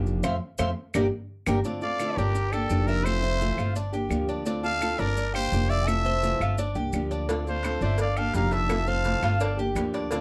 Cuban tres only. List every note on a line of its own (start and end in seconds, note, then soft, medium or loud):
0.24 0.35 C5 loud
0.24 0.35 E5 loud
0.24 0.35 F5 medium
0.59 0.70 C5 loud
0.59 0.70 E5 medium
0.59 0.70 F5 medium
0.95 1.06 G4 loud
0.95 1.06 A#4 medium
0.95 1.06 D5 medium
1.47 1.59 G4 medium
1.47 1.59 A#4 medium
1.47 1.59 D5 medium
1.65 1.99 D4 medium
2.01 2.17 A4 medium
2.18 2.52 D4 medium
2.53 2.87 G4 medium
2.89 3.22 E5 medium
3.23 3.57 C5 medium
3.58 3.76 F4 medium
3.76 3.93 D4 medium
3.94 4.28 G4 medium
4.29 4.45 D4 medium
4.47 4.81 D4 medium
4.82 4.99 A4 medium
4.99 5.33 D4 medium
5.34 5.68 G4 medium
5.70 6.04 E5 medium
6.06 6.40 C5 medium
6.41 6.58 F4 medium
6.59 6.76 D4 medium
6.76 7.10 G4 medium
7.11 7.28 D4 medium
7.29 7.63 D4 loud
7.64 7.81 A4 medium
7.82 8.16 D4 medium
8.17 8.51 G4 medium
8.52 8.87 E5 medium
8.88 9.22 C5 medium
9.23 9.40 F4 medium
9.41 9.58 D4 medium
9.59 9.93 G4 medium
9.94 10.11 D4 medium
10.12 10.21 D4 medium